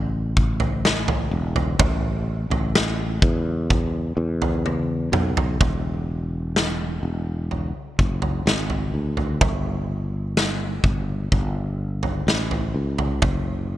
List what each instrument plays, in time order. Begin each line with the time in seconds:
Already playing: fretless electric bass A1
0.37 kick
0.60 floor tom
0.85 snare
1.08 floor tom
1.31 fretless electric bass E1
1.56 floor tom
1.79 fretless electric bass A1, kick, floor tom
2.50 fretless electric bass A1, floor tom
2.75 snare
3.22 fretless electric bass E2, kick
3.70 kick, floor tom
4.17 fretless electric bass E2
4.42 floor tom
4.66 high tom
5.12 fretless electric bass B1, mid tom
5.37 floor tom
5.61 fretless electric bass E1, kick, floor tom
6.56 snare
7.03 fretless electric bass E1
7.51 floor tom
7.99 fretless electric bass F#1, kick
8.22 floor tom
8.46 fretless electric bass G#1, snare
8.70 floor tom
8.94 fretless electric bass D2
9.17 floor tom
9.41 fretless electric bass G1, kick, floor tom
10.37 snare
10.84 fretless electric bass G1, kick
11.32 fretless electric bass G1, kick, floor tom
12.03 floor tom
12.27 fretless electric bass A1, snare
12.51 floor tom
12.74 fretless electric bass C#2
12.98 floor tom
13.22 fretless electric bass F#1, kick, floor tom